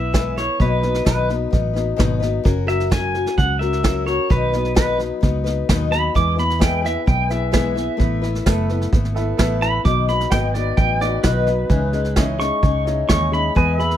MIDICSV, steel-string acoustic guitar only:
0, 0, Header, 1, 2, 480
1, 0, Start_track
1, 0, Tempo, 462820
1, 621, Time_signature, 4, 2, 24, 8
1, 14489, End_track
2, 0, Start_track
2, 0, Title_t, "Steel-string acoustic guitar"
2, 0, Program_c, 0, 25
2, 0, Note_on_c, 0, 59, 41
2, 0, Note_on_c, 0, 64, 51
2, 0, Note_on_c, 0, 71, 49
2, 130, Note_off_c, 0, 59, 0
2, 132, Note_on_c, 0, 52, 72
2, 135, Note_off_c, 0, 71, 0
2, 140, Note_on_c, 0, 56, 72
2, 142, Note_off_c, 0, 64, 0
2, 143, Note_on_c, 0, 59, 77
2, 153, Note_on_c, 0, 64, 83
2, 153, Note_on_c, 0, 71, 82
2, 375, Note_off_c, 0, 71, 0
2, 376, Note_off_c, 0, 52, 0
2, 380, Note_off_c, 0, 56, 0
2, 382, Note_off_c, 0, 59, 0
2, 387, Note_off_c, 0, 64, 0
2, 388, Note_on_c, 0, 71, 49
2, 404, Note_on_c, 0, 64, 44
2, 411, Note_on_c, 0, 59, 41
2, 616, Note_off_c, 0, 59, 0
2, 620, Note_on_c, 0, 47, 68
2, 624, Note_off_c, 0, 71, 0
2, 626, Note_on_c, 0, 51, 71
2, 628, Note_on_c, 0, 59, 76
2, 629, Note_on_c, 0, 54, 76
2, 632, Note_off_c, 0, 64, 0
2, 637, Note_on_c, 0, 63, 69
2, 639, Note_on_c, 0, 71, 82
2, 839, Note_off_c, 0, 71, 0
2, 849, Note_off_c, 0, 63, 0
2, 851, Note_on_c, 0, 71, 48
2, 860, Note_off_c, 0, 47, 0
2, 862, Note_off_c, 0, 59, 0
2, 862, Note_on_c, 0, 63, 49
2, 864, Note_off_c, 0, 51, 0
2, 865, Note_off_c, 0, 54, 0
2, 875, Note_on_c, 0, 59, 40
2, 880, Note_on_c, 0, 54, 39
2, 1075, Note_off_c, 0, 54, 0
2, 1083, Note_off_c, 0, 59, 0
2, 1084, Note_on_c, 0, 47, 74
2, 1088, Note_on_c, 0, 51, 66
2, 1088, Note_on_c, 0, 54, 68
2, 1090, Note_off_c, 0, 63, 0
2, 1090, Note_off_c, 0, 71, 0
2, 1095, Note_on_c, 0, 59, 74
2, 1102, Note_on_c, 0, 63, 76
2, 1102, Note_on_c, 0, 71, 78
2, 1324, Note_off_c, 0, 71, 0
2, 1332, Note_off_c, 0, 47, 0
2, 1333, Note_off_c, 0, 63, 0
2, 1334, Note_off_c, 0, 54, 0
2, 1335, Note_off_c, 0, 51, 0
2, 1337, Note_on_c, 0, 71, 47
2, 1338, Note_off_c, 0, 59, 0
2, 1346, Note_on_c, 0, 63, 51
2, 1350, Note_on_c, 0, 59, 43
2, 1361, Note_on_c, 0, 54, 42
2, 1549, Note_off_c, 0, 54, 0
2, 1562, Note_on_c, 0, 54, 60
2, 1566, Note_off_c, 0, 59, 0
2, 1571, Note_off_c, 0, 63, 0
2, 1578, Note_on_c, 0, 59, 67
2, 1579, Note_off_c, 0, 71, 0
2, 1584, Note_on_c, 0, 63, 66
2, 1598, Note_on_c, 0, 71, 69
2, 1786, Note_off_c, 0, 71, 0
2, 1799, Note_on_c, 0, 71, 51
2, 1802, Note_off_c, 0, 63, 0
2, 1811, Note_off_c, 0, 54, 0
2, 1811, Note_off_c, 0, 59, 0
2, 1814, Note_on_c, 0, 63, 55
2, 1823, Note_on_c, 0, 59, 51
2, 1829, Note_on_c, 0, 54, 51
2, 2038, Note_on_c, 0, 47, 95
2, 2040, Note_off_c, 0, 59, 0
2, 2041, Note_off_c, 0, 54, 0
2, 2042, Note_on_c, 0, 51, 86
2, 2044, Note_off_c, 0, 63, 0
2, 2050, Note_off_c, 0, 71, 0
2, 2053, Note_on_c, 0, 59, 85
2, 2054, Note_on_c, 0, 54, 82
2, 2057, Note_on_c, 0, 63, 89
2, 2062, Note_on_c, 0, 71, 93
2, 2265, Note_off_c, 0, 71, 0
2, 2277, Note_on_c, 0, 71, 59
2, 2280, Note_off_c, 0, 63, 0
2, 2287, Note_off_c, 0, 59, 0
2, 2289, Note_off_c, 0, 47, 0
2, 2291, Note_off_c, 0, 51, 0
2, 2293, Note_on_c, 0, 63, 56
2, 2297, Note_off_c, 0, 54, 0
2, 2299, Note_on_c, 0, 59, 53
2, 2310, Note_on_c, 0, 54, 52
2, 2513, Note_off_c, 0, 54, 0
2, 2526, Note_on_c, 0, 54, 89
2, 2529, Note_off_c, 0, 71, 0
2, 2531, Note_off_c, 0, 59, 0
2, 2535, Note_on_c, 0, 61, 85
2, 2537, Note_off_c, 0, 63, 0
2, 2545, Note_on_c, 0, 66, 79
2, 2547, Note_on_c, 0, 70, 82
2, 2753, Note_off_c, 0, 70, 0
2, 2766, Note_on_c, 0, 70, 55
2, 2770, Note_off_c, 0, 66, 0
2, 2773, Note_off_c, 0, 54, 0
2, 2778, Note_off_c, 0, 61, 0
2, 2782, Note_on_c, 0, 66, 48
2, 2794, Note_on_c, 0, 61, 40
2, 3003, Note_off_c, 0, 61, 0
2, 3004, Note_on_c, 0, 54, 72
2, 3010, Note_off_c, 0, 66, 0
2, 3013, Note_off_c, 0, 70, 0
2, 3016, Note_on_c, 0, 61, 71
2, 3022, Note_on_c, 0, 66, 76
2, 3029, Note_on_c, 0, 70, 77
2, 3249, Note_off_c, 0, 70, 0
2, 3252, Note_off_c, 0, 54, 0
2, 3258, Note_off_c, 0, 61, 0
2, 3261, Note_off_c, 0, 66, 0
2, 3262, Note_on_c, 0, 70, 52
2, 3279, Note_on_c, 0, 66, 53
2, 3287, Note_on_c, 0, 61, 40
2, 3498, Note_off_c, 0, 61, 0
2, 3498, Note_on_c, 0, 54, 61
2, 3501, Note_off_c, 0, 70, 0
2, 3502, Note_off_c, 0, 66, 0
2, 3510, Note_on_c, 0, 61, 61
2, 3515, Note_on_c, 0, 66, 60
2, 3533, Note_on_c, 0, 70, 61
2, 3729, Note_off_c, 0, 70, 0
2, 3739, Note_off_c, 0, 54, 0
2, 3741, Note_on_c, 0, 70, 51
2, 3745, Note_off_c, 0, 61, 0
2, 3747, Note_off_c, 0, 66, 0
2, 3758, Note_on_c, 0, 66, 47
2, 3777, Note_on_c, 0, 61, 43
2, 3972, Note_off_c, 0, 61, 0
2, 3974, Note_on_c, 0, 54, 76
2, 3979, Note_off_c, 0, 66, 0
2, 3981, Note_off_c, 0, 70, 0
2, 3984, Note_on_c, 0, 61, 81
2, 3991, Note_on_c, 0, 66, 77
2, 3992, Note_on_c, 0, 70, 94
2, 4197, Note_off_c, 0, 70, 0
2, 4209, Note_on_c, 0, 70, 51
2, 4212, Note_off_c, 0, 66, 0
2, 4217, Note_off_c, 0, 54, 0
2, 4222, Note_off_c, 0, 61, 0
2, 4224, Note_on_c, 0, 66, 47
2, 4242, Note_on_c, 0, 61, 42
2, 4450, Note_on_c, 0, 47, 69
2, 4455, Note_off_c, 0, 70, 0
2, 4456, Note_on_c, 0, 51, 76
2, 4457, Note_on_c, 0, 54, 76
2, 4459, Note_off_c, 0, 61, 0
2, 4462, Note_off_c, 0, 66, 0
2, 4463, Note_on_c, 0, 59, 70
2, 4471, Note_on_c, 0, 63, 76
2, 4474, Note_on_c, 0, 71, 85
2, 4674, Note_off_c, 0, 71, 0
2, 4686, Note_off_c, 0, 63, 0
2, 4686, Note_on_c, 0, 71, 48
2, 4695, Note_off_c, 0, 47, 0
2, 4698, Note_off_c, 0, 51, 0
2, 4698, Note_on_c, 0, 63, 45
2, 4699, Note_off_c, 0, 54, 0
2, 4701, Note_off_c, 0, 59, 0
2, 4713, Note_on_c, 0, 59, 48
2, 4715, Note_on_c, 0, 54, 41
2, 4916, Note_off_c, 0, 54, 0
2, 4921, Note_on_c, 0, 47, 67
2, 4927, Note_off_c, 0, 59, 0
2, 4929, Note_off_c, 0, 63, 0
2, 4929, Note_on_c, 0, 54, 77
2, 4930, Note_on_c, 0, 51, 70
2, 4933, Note_off_c, 0, 71, 0
2, 4939, Note_on_c, 0, 59, 78
2, 4942, Note_on_c, 0, 63, 77
2, 4943, Note_on_c, 0, 71, 90
2, 5155, Note_off_c, 0, 71, 0
2, 5162, Note_off_c, 0, 63, 0
2, 5167, Note_on_c, 0, 71, 51
2, 5170, Note_off_c, 0, 47, 0
2, 5174, Note_off_c, 0, 54, 0
2, 5174, Note_on_c, 0, 63, 43
2, 5175, Note_off_c, 0, 51, 0
2, 5177, Note_off_c, 0, 59, 0
2, 5190, Note_on_c, 0, 59, 45
2, 5191, Note_on_c, 0, 54, 45
2, 5388, Note_off_c, 0, 54, 0
2, 5400, Note_off_c, 0, 59, 0
2, 5400, Note_on_c, 0, 54, 66
2, 5407, Note_off_c, 0, 63, 0
2, 5413, Note_off_c, 0, 71, 0
2, 5413, Note_on_c, 0, 59, 63
2, 5419, Note_on_c, 0, 63, 68
2, 5427, Note_on_c, 0, 71, 68
2, 5629, Note_off_c, 0, 71, 0
2, 5638, Note_off_c, 0, 63, 0
2, 5642, Note_on_c, 0, 71, 61
2, 5650, Note_off_c, 0, 54, 0
2, 5650, Note_on_c, 0, 63, 50
2, 5651, Note_off_c, 0, 59, 0
2, 5663, Note_on_c, 0, 59, 45
2, 5671, Note_on_c, 0, 54, 43
2, 5891, Note_off_c, 0, 71, 0
2, 5895, Note_off_c, 0, 63, 0
2, 5896, Note_off_c, 0, 54, 0
2, 5900, Note_on_c, 0, 47, 87
2, 5901, Note_off_c, 0, 59, 0
2, 5907, Note_on_c, 0, 51, 88
2, 5908, Note_on_c, 0, 54, 80
2, 5914, Note_on_c, 0, 59, 82
2, 5919, Note_on_c, 0, 63, 95
2, 5924, Note_on_c, 0, 71, 103
2, 6118, Note_off_c, 0, 71, 0
2, 6127, Note_off_c, 0, 63, 0
2, 6131, Note_on_c, 0, 71, 52
2, 6139, Note_on_c, 0, 63, 51
2, 6140, Note_off_c, 0, 47, 0
2, 6142, Note_off_c, 0, 59, 0
2, 6143, Note_off_c, 0, 51, 0
2, 6144, Note_off_c, 0, 54, 0
2, 6155, Note_on_c, 0, 59, 47
2, 6166, Note_on_c, 0, 54, 41
2, 6369, Note_off_c, 0, 54, 0
2, 6370, Note_on_c, 0, 52, 66
2, 6372, Note_off_c, 0, 59, 0
2, 6374, Note_on_c, 0, 56, 80
2, 6375, Note_off_c, 0, 71, 0
2, 6380, Note_off_c, 0, 63, 0
2, 6384, Note_on_c, 0, 59, 75
2, 6384, Note_on_c, 0, 64, 81
2, 6391, Note_on_c, 0, 71, 84
2, 6580, Note_off_c, 0, 71, 0
2, 6592, Note_on_c, 0, 71, 49
2, 6595, Note_off_c, 0, 64, 0
2, 6608, Note_off_c, 0, 59, 0
2, 6608, Note_on_c, 0, 64, 45
2, 6615, Note_off_c, 0, 52, 0
2, 6617, Note_off_c, 0, 56, 0
2, 6621, Note_on_c, 0, 59, 42
2, 6833, Note_on_c, 0, 52, 66
2, 6834, Note_off_c, 0, 59, 0
2, 6835, Note_on_c, 0, 56, 67
2, 6837, Note_off_c, 0, 64, 0
2, 6846, Note_off_c, 0, 71, 0
2, 6846, Note_on_c, 0, 59, 72
2, 6849, Note_on_c, 0, 64, 72
2, 6857, Note_on_c, 0, 71, 74
2, 7062, Note_off_c, 0, 71, 0
2, 7075, Note_on_c, 0, 71, 48
2, 7085, Note_off_c, 0, 64, 0
2, 7086, Note_off_c, 0, 52, 0
2, 7087, Note_off_c, 0, 56, 0
2, 7093, Note_off_c, 0, 59, 0
2, 7097, Note_on_c, 0, 64, 46
2, 7111, Note_on_c, 0, 59, 43
2, 7318, Note_off_c, 0, 59, 0
2, 7322, Note_on_c, 0, 56, 54
2, 7327, Note_off_c, 0, 64, 0
2, 7327, Note_off_c, 0, 71, 0
2, 7331, Note_on_c, 0, 59, 56
2, 7339, Note_on_c, 0, 64, 63
2, 7347, Note_on_c, 0, 71, 62
2, 7548, Note_off_c, 0, 71, 0
2, 7560, Note_on_c, 0, 71, 51
2, 7566, Note_off_c, 0, 64, 0
2, 7571, Note_off_c, 0, 56, 0
2, 7575, Note_off_c, 0, 59, 0
2, 7578, Note_on_c, 0, 64, 46
2, 7592, Note_on_c, 0, 59, 44
2, 7793, Note_off_c, 0, 59, 0
2, 7793, Note_off_c, 0, 64, 0
2, 7794, Note_on_c, 0, 52, 74
2, 7800, Note_off_c, 0, 71, 0
2, 7800, Note_on_c, 0, 56, 86
2, 7805, Note_on_c, 0, 64, 79
2, 7806, Note_on_c, 0, 59, 80
2, 7812, Note_on_c, 0, 71, 84
2, 8016, Note_off_c, 0, 71, 0
2, 8028, Note_on_c, 0, 71, 49
2, 8032, Note_off_c, 0, 64, 0
2, 8045, Note_off_c, 0, 59, 0
2, 8045, Note_on_c, 0, 64, 51
2, 8047, Note_off_c, 0, 52, 0
2, 8050, Note_off_c, 0, 56, 0
2, 8057, Note_on_c, 0, 59, 44
2, 8262, Note_off_c, 0, 59, 0
2, 8265, Note_on_c, 0, 57, 72
2, 8271, Note_off_c, 0, 64, 0
2, 8275, Note_on_c, 0, 59, 78
2, 8278, Note_off_c, 0, 71, 0
2, 8283, Note_on_c, 0, 64, 65
2, 8290, Note_on_c, 0, 71, 73
2, 8508, Note_off_c, 0, 71, 0
2, 8519, Note_off_c, 0, 64, 0
2, 8520, Note_on_c, 0, 71, 57
2, 8522, Note_off_c, 0, 57, 0
2, 8527, Note_off_c, 0, 59, 0
2, 8531, Note_on_c, 0, 64, 52
2, 8548, Note_on_c, 0, 59, 48
2, 8765, Note_off_c, 0, 59, 0
2, 8770, Note_off_c, 0, 71, 0
2, 8773, Note_on_c, 0, 57, 81
2, 8775, Note_off_c, 0, 64, 0
2, 8777, Note_on_c, 0, 59, 77
2, 8786, Note_on_c, 0, 64, 84
2, 8791, Note_on_c, 0, 71, 84
2, 9011, Note_off_c, 0, 71, 0
2, 9016, Note_off_c, 0, 57, 0
2, 9018, Note_off_c, 0, 59, 0
2, 9023, Note_off_c, 0, 64, 0
2, 9023, Note_on_c, 0, 71, 59
2, 9043, Note_on_c, 0, 64, 48
2, 9051, Note_on_c, 0, 59, 49
2, 9257, Note_off_c, 0, 59, 0
2, 9257, Note_on_c, 0, 57, 69
2, 9261, Note_off_c, 0, 71, 0
2, 9265, Note_off_c, 0, 64, 0
2, 9269, Note_on_c, 0, 59, 72
2, 9277, Note_on_c, 0, 64, 68
2, 9288, Note_on_c, 0, 71, 69
2, 9487, Note_off_c, 0, 71, 0
2, 9498, Note_off_c, 0, 57, 0
2, 9500, Note_on_c, 0, 71, 60
2, 9504, Note_off_c, 0, 59, 0
2, 9505, Note_off_c, 0, 64, 0
2, 9517, Note_on_c, 0, 64, 57
2, 9529, Note_on_c, 0, 59, 54
2, 9724, Note_off_c, 0, 59, 0
2, 9727, Note_off_c, 0, 64, 0
2, 9730, Note_on_c, 0, 57, 77
2, 9735, Note_off_c, 0, 71, 0
2, 9736, Note_on_c, 0, 59, 87
2, 9740, Note_on_c, 0, 64, 102
2, 9747, Note_on_c, 0, 71, 84
2, 9954, Note_off_c, 0, 71, 0
2, 9966, Note_off_c, 0, 64, 0
2, 9966, Note_on_c, 0, 71, 52
2, 9974, Note_off_c, 0, 57, 0
2, 9978, Note_off_c, 0, 59, 0
2, 9979, Note_on_c, 0, 64, 49
2, 9996, Note_on_c, 0, 59, 41
2, 10212, Note_off_c, 0, 71, 0
2, 10212, Note_on_c, 0, 47, 70
2, 10215, Note_off_c, 0, 59, 0
2, 10219, Note_off_c, 0, 64, 0
2, 10220, Note_on_c, 0, 51, 67
2, 10222, Note_on_c, 0, 54, 75
2, 10227, Note_on_c, 0, 59, 77
2, 10230, Note_on_c, 0, 63, 73
2, 10235, Note_on_c, 0, 71, 83
2, 10451, Note_off_c, 0, 71, 0
2, 10456, Note_off_c, 0, 47, 0
2, 10459, Note_off_c, 0, 51, 0
2, 10460, Note_off_c, 0, 54, 0
2, 10463, Note_off_c, 0, 59, 0
2, 10464, Note_off_c, 0, 63, 0
2, 10464, Note_on_c, 0, 71, 50
2, 10475, Note_on_c, 0, 63, 50
2, 10486, Note_on_c, 0, 59, 47
2, 10494, Note_on_c, 0, 54, 42
2, 10698, Note_off_c, 0, 54, 0
2, 10698, Note_on_c, 0, 47, 76
2, 10700, Note_off_c, 0, 59, 0
2, 10701, Note_off_c, 0, 71, 0
2, 10705, Note_on_c, 0, 51, 72
2, 10707, Note_off_c, 0, 63, 0
2, 10711, Note_on_c, 0, 54, 69
2, 10713, Note_on_c, 0, 59, 80
2, 10719, Note_on_c, 0, 63, 77
2, 10723, Note_on_c, 0, 71, 76
2, 10926, Note_off_c, 0, 71, 0
2, 10936, Note_off_c, 0, 63, 0
2, 10938, Note_off_c, 0, 47, 0
2, 10939, Note_on_c, 0, 71, 51
2, 10942, Note_off_c, 0, 51, 0
2, 10942, Note_off_c, 0, 59, 0
2, 10945, Note_off_c, 0, 54, 0
2, 10948, Note_on_c, 0, 63, 48
2, 10955, Note_on_c, 0, 59, 48
2, 10967, Note_on_c, 0, 54, 41
2, 11161, Note_off_c, 0, 54, 0
2, 11173, Note_off_c, 0, 59, 0
2, 11174, Note_on_c, 0, 54, 55
2, 11179, Note_off_c, 0, 71, 0
2, 11183, Note_off_c, 0, 63, 0
2, 11186, Note_on_c, 0, 59, 62
2, 11197, Note_on_c, 0, 63, 61
2, 11206, Note_on_c, 0, 71, 57
2, 11401, Note_off_c, 0, 71, 0
2, 11410, Note_off_c, 0, 63, 0
2, 11414, Note_on_c, 0, 71, 54
2, 11416, Note_off_c, 0, 54, 0
2, 11422, Note_off_c, 0, 59, 0
2, 11422, Note_on_c, 0, 63, 49
2, 11435, Note_on_c, 0, 59, 39
2, 11445, Note_on_c, 0, 54, 44
2, 11641, Note_off_c, 0, 54, 0
2, 11648, Note_on_c, 0, 47, 77
2, 11651, Note_off_c, 0, 59, 0
2, 11654, Note_on_c, 0, 54, 79
2, 11655, Note_off_c, 0, 63, 0
2, 11656, Note_off_c, 0, 71, 0
2, 11657, Note_on_c, 0, 51, 91
2, 11664, Note_on_c, 0, 59, 81
2, 11668, Note_on_c, 0, 63, 81
2, 11671, Note_on_c, 0, 71, 84
2, 11880, Note_off_c, 0, 71, 0
2, 11887, Note_off_c, 0, 63, 0
2, 11893, Note_off_c, 0, 47, 0
2, 11893, Note_on_c, 0, 71, 49
2, 11896, Note_off_c, 0, 54, 0
2, 11898, Note_off_c, 0, 51, 0
2, 11899, Note_on_c, 0, 63, 44
2, 11901, Note_off_c, 0, 59, 0
2, 11912, Note_on_c, 0, 59, 42
2, 11918, Note_on_c, 0, 54, 41
2, 12128, Note_on_c, 0, 49, 70
2, 12130, Note_off_c, 0, 59, 0
2, 12130, Note_on_c, 0, 52, 83
2, 12132, Note_off_c, 0, 54, 0
2, 12132, Note_off_c, 0, 63, 0
2, 12134, Note_on_c, 0, 61, 85
2, 12136, Note_off_c, 0, 71, 0
2, 12136, Note_on_c, 0, 56, 79
2, 12144, Note_on_c, 0, 63, 78
2, 12144, Note_on_c, 0, 68, 75
2, 12363, Note_off_c, 0, 68, 0
2, 12367, Note_off_c, 0, 63, 0
2, 12373, Note_off_c, 0, 49, 0
2, 12374, Note_off_c, 0, 52, 0
2, 12376, Note_off_c, 0, 61, 0
2, 12376, Note_on_c, 0, 68, 52
2, 12377, Note_off_c, 0, 56, 0
2, 12380, Note_on_c, 0, 63, 54
2, 12393, Note_on_c, 0, 61, 44
2, 12406, Note_on_c, 0, 56, 50
2, 12609, Note_off_c, 0, 56, 0
2, 12612, Note_off_c, 0, 61, 0
2, 12612, Note_off_c, 0, 63, 0
2, 12612, Note_on_c, 0, 49, 72
2, 12617, Note_off_c, 0, 68, 0
2, 12619, Note_on_c, 0, 52, 78
2, 12621, Note_on_c, 0, 56, 88
2, 12624, Note_on_c, 0, 63, 84
2, 12625, Note_on_c, 0, 61, 80
2, 12633, Note_on_c, 0, 68, 89
2, 12833, Note_off_c, 0, 68, 0
2, 12846, Note_on_c, 0, 68, 54
2, 12848, Note_off_c, 0, 63, 0
2, 12855, Note_off_c, 0, 49, 0
2, 12857, Note_off_c, 0, 61, 0
2, 12858, Note_off_c, 0, 52, 0
2, 12860, Note_off_c, 0, 56, 0
2, 12861, Note_on_c, 0, 63, 47
2, 12870, Note_on_c, 0, 61, 41
2, 12881, Note_on_c, 0, 56, 41
2, 13082, Note_off_c, 0, 56, 0
2, 13090, Note_off_c, 0, 61, 0
2, 13092, Note_off_c, 0, 68, 0
2, 13095, Note_on_c, 0, 56, 54
2, 13099, Note_off_c, 0, 63, 0
2, 13102, Note_on_c, 0, 61, 60
2, 13114, Note_on_c, 0, 63, 67
2, 13121, Note_on_c, 0, 68, 65
2, 13332, Note_off_c, 0, 68, 0
2, 13336, Note_off_c, 0, 63, 0
2, 13337, Note_off_c, 0, 56, 0
2, 13340, Note_off_c, 0, 61, 0
2, 13345, Note_on_c, 0, 68, 54
2, 13349, Note_on_c, 0, 63, 52
2, 13357, Note_on_c, 0, 61, 42
2, 13372, Note_on_c, 0, 56, 40
2, 13569, Note_on_c, 0, 49, 78
2, 13570, Note_off_c, 0, 56, 0
2, 13572, Note_off_c, 0, 61, 0
2, 13574, Note_off_c, 0, 68, 0
2, 13574, Note_on_c, 0, 52, 82
2, 13575, Note_off_c, 0, 63, 0
2, 13582, Note_on_c, 0, 56, 78
2, 13585, Note_on_c, 0, 61, 78
2, 13587, Note_on_c, 0, 68, 89
2, 13588, Note_on_c, 0, 63, 77
2, 13800, Note_off_c, 0, 68, 0
2, 13810, Note_off_c, 0, 63, 0
2, 13813, Note_on_c, 0, 68, 50
2, 13814, Note_off_c, 0, 49, 0
2, 13816, Note_off_c, 0, 52, 0
2, 13820, Note_off_c, 0, 56, 0
2, 13821, Note_off_c, 0, 61, 0
2, 13823, Note_on_c, 0, 63, 45
2, 13837, Note_on_c, 0, 61, 45
2, 13839, Note_on_c, 0, 56, 44
2, 14041, Note_off_c, 0, 56, 0
2, 14050, Note_on_c, 0, 52, 64
2, 14053, Note_on_c, 0, 56, 78
2, 14055, Note_off_c, 0, 68, 0
2, 14057, Note_off_c, 0, 61, 0
2, 14061, Note_off_c, 0, 63, 0
2, 14061, Note_on_c, 0, 59, 78
2, 14069, Note_on_c, 0, 68, 79
2, 14070, Note_on_c, 0, 71, 86
2, 14284, Note_off_c, 0, 71, 0
2, 14292, Note_off_c, 0, 68, 0
2, 14294, Note_off_c, 0, 52, 0
2, 14296, Note_off_c, 0, 56, 0
2, 14296, Note_on_c, 0, 71, 52
2, 14300, Note_off_c, 0, 59, 0
2, 14304, Note_on_c, 0, 68, 46
2, 14320, Note_on_c, 0, 59, 38
2, 14489, Note_off_c, 0, 59, 0
2, 14489, Note_off_c, 0, 68, 0
2, 14489, Note_off_c, 0, 71, 0
2, 14489, End_track
0, 0, End_of_file